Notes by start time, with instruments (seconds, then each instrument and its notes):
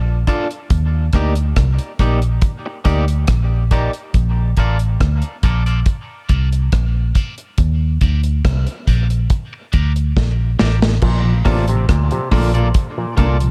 Already playing: fingered electric bass A#1
0.27 clean electric guitar D4 F4 A4 D5, kick, closed hi-hat
0.51 closed hi-hat
0.70 fingered electric bass D#2, kick, closed hi-hat
1.13 fingered electric bass D2, clean electric guitar A#3 D#4 G4 D5, kick, cross-stick, closed hi-hat
1.35 closed hi-hat
1.56 fingered electric bass C2, kick, cross-stick, closed hi-hat
1.79 closed hi-hat
1.99 fingered electric bass A#1, clean electric guitar A#3 D#4 G4 D5, kick, closed hi-hat
2.22 closed hi-hat
2.42 kick, closed hi-hat
2.66 muted clean electric guitar stroke
2.85 fingered electric bass D2, clean electric guitar A#3 D#4 G4 D5, kick, closed hi-hat
3.08 closed hi-hat
3.27 fingered electric bass A#1, kick, cross-stick, closed hi-hat
3.71 clean electric guitar A#3 D#4 G4 D5, kick, closed hi-hat
3.93 closed hi-hat
4.14 fingered electric bass A#1, kick, closed hi-hat
4.57 fingered electric bass A1, clean electric guitar A#3 F4 A4 D5, kick, closed hi-hat
4.79 closed hi-hat
5.01 fingered electric bass D2, kick, cross-stick, closed hi-hat
5.22 closed hi-hat
5.43 fingered electric bass A#1, clean electric guitar A#3 F4 A4 D5, kick, closed hi-hat
5.66 clean electric guitar A#3 F4 A4 D5, closed hi-hat
5.86 kick, closed hi-hat
6.29 fingered electric bass C2, clean electric guitar A#3 F4 A4 D5, kick, closed hi-hat
6.52 closed hi-hat
6.72 fingered electric bass A#1, kick, cross-stick, closed hi-hat
7.15 clean electric guitar A#3 F4 A4 D5, kick, closed hi-hat
7.38 closed hi-hat
7.58 fingered electric bass D#2, kick, closed hi-hat
8.01 fingered electric bass D2, clean electric guitar D4 G4 A#4 D5, kick, closed hi-hat
8.23 closed hi-hat
8.45 fingered electric bass C2, kick, cross-stick, closed hi-hat
8.67 closed hi-hat
8.87 fingered electric bass A#1, clean electric guitar D4 G4 A#4 D5, kick, closed hi-hat
9.10 closed hi-hat
9.30 kick, closed hi-hat
9.53 muted clean electric guitar stroke
9.72 fingered electric bass D2, clean electric guitar D4 G4 A#4 D5, kick, closed hi-hat
9.96 closed hi-hat
10.17 fingered electric bass A#1, kick, snare
10.59 fingered electric bass A1, clean electric guitar D4 G4 A#4 D5, snare
10.82 snare
11.02 fingered electric bass A#1, clav A#2, kick, crash
11.25 tonewheel organ A#2 F3
11.45 fingered electric bass A1, clav C3, tonewheel organ A3 A#3 D4, clean electric guitar A#3 F4 A4 D5, kick, cross-stick, open hi-hat
11.68 tonewheel organ A#2 F3, clav C3, closed hi-hat
11.89 fingered electric bass D2, clav A#2, kick, cross-stick, closed hi-hat
12.11 tonewheel organ A#2 F3, clav C3, closed hi-hat
12.31 fingered electric bass A#1, clav D3, tonewheel organ A3 A#3 D4, clean electric guitar A#3 F4 A4 D5, kick, open hi-hat
12.54 tonewheel organ A#2 F3, clean electric guitar A#3 F4 A4 D5, closed hi-hat
12.74 kick, closed hi-hat
12.97 tonewheel organ A#2 F3, clav A#2
13.17 fingered electric bass C2, clav A#2, tonewheel organ A3 A#3 D4, clean electric guitar A#3 F4 A4 D5, kick, closed hi-hat
13.40 tonewheel organ A#2 F3, closed hi-hat